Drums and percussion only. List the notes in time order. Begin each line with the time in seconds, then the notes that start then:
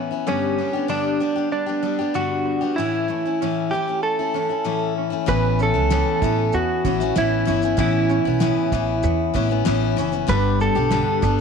5.28 kick, shaker
5.59 shaker
5.91 snare, shaker
6.22 kick, shaker
6.52 shaker
6.85 kick, shaker
7.01 snare, shaker
7.16 snare, shaker
7.47 shaker
7.62 shaker
7.78 kick, shaker
8.09 shaker
8.41 snare, shaker
8.72 kick, shaker
9.03 shaker
9.35 kick, shaker
9.51 snare
9.66 snare, shaker
9.98 shaker
10.13 shaker
10.29 kick, shaker
10.60 shaker
10.91 snare, shaker
11.23 kick, shaker